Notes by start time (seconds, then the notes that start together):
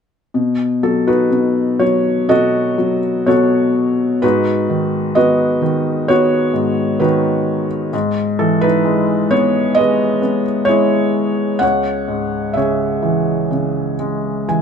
0.34 B2
0.83 F#3 A4
1.07 D#4 F#4 B4
1.30 B2
1.79 F#3 C#5
2.29 B2 F#4 A4 D#5
2.78 F#3
3.26 B2 F#4 A4 C#5
4.22 G#2 D#4 F#4 B4
4.70 D#3
5.15 B3 F#4 B4 D#5
5.62 D#3
6.08 B3 F#4 C#5
6.54 G#2
7.00 D#3 D#4 F#4 B4
7.93 G#2
8.39 E3 A4
8.61 D#4 E4 B4
8.85 G#3
9.31 B3 C#5
9.75 G#3 B4 D#5
10.22 B3
10.65 G#3 E4 C#5
11.59 C#2 C#5 F#5
12.08 G#2
12.53 C#3 G#4 E5
12.58 C#5
13.02 E3
13.51 C#3
14.00 G#3
14.48 E3 G#5